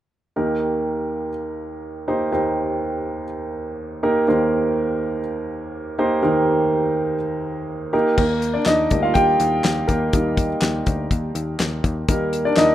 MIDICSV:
0, 0, Header, 1, 4, 480
1, 0, Start_track
1, 0, Key_signature, -3, "major"
1, 0, Tempo, 488599
1, 354, Time_signature, 4, 2, 24, 8
1, 12525, End_track
2, 0, Start_track
2, 0, Title_t, "Upright piano"
2, 0, Program_c, 0, 0
2, 355, Note_on_c, 0, 58, 57
2, 358, Note_on_c, 0, 39, 52
2, 358, Note_on_c, 0, 63, 48
2, 359, Note_on_c, 0, 67, 57
2, 359, Note_on_c, 0, 70, 69
2, 360, Note_on_c, 0, 51, 52
2, 522, Control_c, 0, 64, 127
2, 1260, Note_off_c, 0, 58, 0
2, 1262, Note_off_c, 0, 63, 0
2, 1262, Note_off_c, 0, 67, 0
2, 1262, Note_off_c, 0, 70, 0
2, 2040, Note_on_c, 0, 67, 59
2, 2041, Note_on_c, 0, 63, 60
2, 2042, Note_on_c, 0, 58, 58
2, 2043, Note_on_c, 0, 72, 66
2, 2238, Note_off_c, 0, 39, 0
2, 2239, Note_off_c, 0, 51, 0
2, 2264, Note_off_c, 0, 67, 0
2, 2265, Note_off_c, 0, 58, 0
2, 2265, Note_off_c, 0, 63, 0
2, 2266, Note_off_c, 0, 72, 0
2, 2279, Note_on_c, 0, 39, 53
2, 2280, Note_on_c, 0, 51, 52
2, 2280, Note_on_c, 0, 63, 55
2, 2282, Note_on_c, 0, 67, 54
2, 2283, Note_on_c, 0, 58, 57
2, 2283, Note_on_c, 0, 72, 67
2, 3184, Note_off_c, 0, 63, 0
2, 3185, Note_off_c, 0, 58, 0
2, 3185, Note_off_c, 0, 67, 0
2, 3185, Note_off_c, 0, 72, 0
2, 3957, Note_on_c, 0, 63, 63
2, 3959, Note_on_c, 0, 58, 69
2, 3961, Note_on_c, 0, 67, 66
2, 3963, Note_on_c, 0, 70, 76
2, 4159, Note_off_c, 0, 39, 0
2, 4160, Note_off_c, 0, 51, 0
2, 4183, Note_off_c, 0, 63, 0
2, 4184, Note_off_c, 0, 58, 0
2, 4185, Note_off_c, 0, 67, 0
2, 4186, Note_off_c, 0, 70, 0
2, 4202, Note_on_c, 0, 58, 59
2, 4203, Note_on_c, 0, 63, 51
2, 4204, Note_on_c, 0, 67, 58
2, 4206, Note_on_c, 0, 39, 53
2, 4206, Note_on_c, 0, 72, 68
2, 4208, Note_on_c, 0, 51, 52
2, 5105, Note_off_c, 0, 58, 0
2, 5106, Note_off_c, 0, 63, 0
2, 5106, Note_off_c, 0, 67, 0
2, 5107, Note_off_c, 0, 72, 0
2, 5880, Note_on_c, 0, 67, 64
2, 5881, Note_on_c, 0, 58, 68
2, 5882, Note_on_c, 0, 63, 66
2, 5885, Note_on_c, 0, 72, 81
2, 6083, Note_off_c, 0, 39, 0
2, 6084, Note_off_c, 0, 51, 0
2, 6102, Note_off_c, 0, 58, 0
2, 6102, Note_off_c, 0, 63, 0
2, 6104, Note_off_c, 0, 67, 0
2, 6107, Note_off_c, 0, 72, 0
2, 6117, Note_on_c, 0, 39, 56
2, 6117, Note_on_c, 0, 58, 62
2, 6117, Note_on_c, 0, 63, 61
2, 6117, Note_on_c, 0, 70, 69
2, 6119, Note_on_c, 0, 67, 60
2, 6121, Note_on_c, 0, 51, 60
2, 7022, Note_off_c, 0, 58, 0
2, 7022, Note_off_c, 0, 63, 0
2, 7022, Note_off_c, 0, 70, 0
2, 7023, Note_off_c, 0, 67, 0
2, 7757, Note_off_c, 0, 39, 0
2, 7760, Note_off_c, 0, 51, 0
2, 7790, Note_on_c, 0, 58, 72
2, 7790, Note_on_c, 0, 67, 69
2, 7792, Note_on_c, 0, 70, 76
2, 7793, Note_on_c, 0, 63, 66
2, 7812, Control_c, 0, 64, 0
2, 7906, Control_c, 0, 64, 127
2, 8015, Note_off_c, 0, 70, 0
2, 8020, Note_off_c, 0, 58, 0
2, 8020, Note_off_c, 0, 67, 0
2, 8021, Note_off_c, 0, 63, 0
2, 8030, Note_on_c, 0, 70, 72
2, 8045, Note_on_c, 0, 58, 58
2, 8050, Control_c, 0, 64, 0
2, 8218, Control_c, 0, 64, 127
2, 8376, Note_off_c, 0, 58, 0
2, 8386, Note_on_c, 0, 74, 70
2, 8404, Note_off_c, 0, 70, 0
2, 8405, Note_on_c, 0, 62, 53
2, 8502, Note_off_c, 0, 74, 0
2, 8513, Note_off_c, 0, 62, 0
2, 8513, Note_on_c, 0, 75, 82
2, 8530, Note_on_c, 0, 63, 68
2, 8753, Note_off_c, 0, 63, 0
2, 8756, Note_on_c, 0, 55, 47
2, 8763, Note_on_c, 0, 58, 40
2, 8767, Note_on_c, 0, 63, 48
2, 8849, Note_off_c, 0, 75, 0
2, 8867, Note_on_c, 0, 77, 68
2, 8886, Note_on_c, 0, 65, 63
2, 8978, Note_on_c, 0, 79, 85
2, 8993, Note_off_c, 0, 65, 0
2, 8995, Note_off_c, 0, 77, 0
2, 9002, Note_on_c, 0, 67, 65
2, 9679, Note_off_c, 0, 67, 0
2, 9703, Note_on_c, 0, 70, 71
2, 9710, Note_off_c, 0, 58, 0
2, 9725, Note_on_c, 0, 58, 59
2, 9728, Note_off_c, 0, 79, 0
2, 9950, Note_off_c, 0, 55, 0
2, 9953, Note_off_c, 0, 58, 0
2, 9959, Note_off_c, 0, 63, 0
2, 9964, Note_on_c, 0, 55, 46
2, 9967, Note_on_c, 0, 58, 41
2, 9973, Note_on_c, 0, 63, 49
2, 10279, Note_off_c, 0, 55, 0
2, 10280, Note_off_c, 0, 58, 0
2, 10283, Note_off_c, 0, 63, 0
2, 11108, Note_off_c, 0, 70, 0
2, 11874, Note_on_c, 0, 55, 48
2, 11876, Note_on_c, 0, 70, 71
2, 11882, Note_on_c, 0, 58, 61
2, 11885, Note_on_c, 0, 63, 50
2, 12192, Note_off_c, 0, 55, 0
2, 12198, Note_off_c, 0, 63, 0
2, 12214, Note_off_c, 0, 58, 0
2, 12233, Note_on_c, 0, 74, 76
2, 12245, Note_off_c, 0, 70, 0
2, 12247, Note_on_c, 0, 62, 62
2, 12352, Note_off_c, 0, 62, 0
2, 12352, Note_on_c, 0, 75, 87
2, 12356, Note_off_c, 0, 74, 0
2, 12368, Note_on_c, 0, 63, 73
2, 12525, Note_off_c, 0, 63, 0
2, 12525, Note_off_c, 0, 75, 0
2, 12525, End_track
3, 0, Start_track
3, 0, Title_t, "Picked electric bass"
3, 0, Program_c, 1, 34
3, 8036, Note_on_c, 1, 39, 90
3, 8429, Note_off_c, 1, 39, 0
3, 8516, Note_on_c, 1, 39, 89
3, 8713, Note_off_c, 1, 39, 0
3, 8755, Note_on_c, 1, 38, 80
3, 8952, Note_off_c, 1, 38, 0
3, 8991, Note_on_c, 1, 39, 85
3, 9190, Note_off_c, 1, 39, 0
3, 9236, Note_on_c, 1, 39, 87
3, 9432, Note_off_c, 1, 39, 0
3, 9474, Note_on_c, 1, 39, 74
3, 9671, Note_off_c, 1, 39, 0
3, 9715, Note_on_c, 1, 39, 86
3, 9912, Note_off_c, 1, 39, 0
3, 9957, Note_on_c, 1, 39, 88
3, 10349, Note_off_c, 1, 39, 0
3, 10431, Note_on_c, 1, 39, 89
3, 10629, Note_off_c, 1, 39, 0
3, 10678, Note_on_c, 1, 38, 91
3, 10873, Note_off_c, 1, 38, 0
3, 10913, Note_on_c, 1, 39, 84
3, 11110, Note_off_c, 1, 39, 0
3, 11151, Note_on_c, 1, 39, 80
3, 11348, Note_off_c, 1, 39, 0
3, 11392, Note_on_c, 1, 39, 75
3, 11589, Note_off_c, 1, 39, 0
3, 11632, Note_on_c, 1, 39, 85
3, 11829, Note_off_c, 1, 39, 0
3, 11873, Note_on_c, 1, 39, 103
3, 12266, Note_off_c, 1, 39, 0
3, 12352, Note_on_c, 1, 39, 90
3, 12525, Note_off_c, 1, 39, 0
3, 12525, End_track
4, 0, Start_track
4, 0, Title_t, "Drums"
4, 8034, Note_on_c, 9, 36, 87
4, 8034, Note_on_c, 9, 49, 84
4, 8132, Note_off_c, 9, 36, 0
4, 8133, Note_off_c, 9, 49, 0
4, 8273, Note_on_c, 9, 42, 60
4, 8371, Note_off_c, 9, 42, 0
4, 8503, Note_on_c, 9, 39, 70
4, 8508, Note_on_c, 9, 38, 83
4, 8508, Note_on_c, 9, 42, 60
4, 8601, Note_off_c, 9, 39, 0
4, 8607, Note_off_c, 9, 38, 0
4, 8607, Note_off_c, 9, 42, 0
4, 8748, Note_on_c, 9, 42, 62
4, 8755, Note_on_c, 9, 36, 76
4, 8846, Note_off_c, 9, 42, 0
4, 8853, Note_off_c, 9, 36, 0
4, 8988, Note_on_c, 9, 42, 71
4, 8992, Note_on_c, 9, 36, 82
4, 9087, Note_off_c, 9, 42, 0
4, 9091, Note_off_c, 9, 36, 0
4, 9232, Note_on_c, 9, 42, 69
4, 9330, Note_off_c, 9, 42, 0
4, 9471, Note_on_c, 9, 39, 70
4, 9472, Note_on_c, 9, 42, 69
4, 9477, Note_on_c, 9, 38, 93
4, 9569, Note_off_c, 9, 39, 0
4, 9570, Note_off_c, 9, 42, 0
4, 9575, Note_off_c, 9, 38, 0
4, 9710, Note_on_c, 9, 42, 55
4, 9713, Note_on_c, 9, 36, 76
4, 9809, Note_off_c, 9, 42, 0
4, 9811, Note_off_c, 9, 36, 0
4, 9951, Note_on_c, 9, 42, 81
4, 9955, Note_on_c, 9, 36, 90
4, 10050, Note_off_c, 9, 42, 0
4, 10054, Note_off_c, 9, 36, 0
4, 10192, Note_on_c, 9, 36, 86
4, 10194, Note_on_c, 9, 42, 72
4, 10290, Note_off_c, 9, 36, 0
4, 10292, Note_off_c, 9, 42, 0
4, 10427, Note_on_c, 9, 39, 73
4, 10432, Note_on_c, 9, 42, 62
4, 10433, Note_on_c, 9, 38, 85
4, 10525, Note_off_c, 9, 39, 0
4, 10531, Note_off_c, 9, 38, 0
4, 10531, Note_off_c, 9, 42, 0
4, 10672, Note_on_c, 9, 42, 71
4, 10677, Note_on_c, 9, 36, 79
4, 10771, Note_off_c, 9, 42, 0
4, 10775, Note_off_c, 9, 36, 0
4, 10913, Note_on_c, 9, 36, 80
4, 10913, Note_on_c, 9, 42, 71
4, 11011, Note_off_c, 9, 36, 0
4, 11011, Note_off_c, 9, 42, 0
4, 11153, Note_on_c, 9, 42, 64
4, 11251, Note_off_c, 9, 42, 0
4, 11391, Note_on_c, 9, 39, 75
4, 11392, Note_on_c, 9, 42, 68
4, 11397, Note_on_c, 9, 38, 86
4, 11489, Note_off_c, 9, 39, 0
4, 11490, Note_off_c, 9, 42, 0
4, 11495, Note_off_c, 9, 38, 0
4, 11632, Note_on_c, 9, 36, 76
4, 11633, Note_on_c, 9, 42, 53
4, 11730, Note_off_c, 9, 36, 0
4, 11732, Note_off_c, 9, 42, 0
4, 11872, Note_on_c, 9, 42, 88
4, 11873, Note_on_c, 9, 36, 102
4, 11970, Note_off_c, 9, 42, 0
4, 11972, Note_off_c, 9, 36, 0
4, 12111, Note_on_c, 9, 42, 72
4, 12210, Note_off_c, 9, 42, 0
4, 12342, Note_on_c, 9, 39, 75
4, 12348, Note_on_c, 9, 38, 89
4, 12348, Note_on_c, 9, 42, 61
4, 12441, Note_off_c, 9, 39, 0
4, 12446, Note_off_c, 9, 38, 0
4, 12446, Note_off_c, 9, 42, 0
4, 12525, End_track
0, 0, End_of_file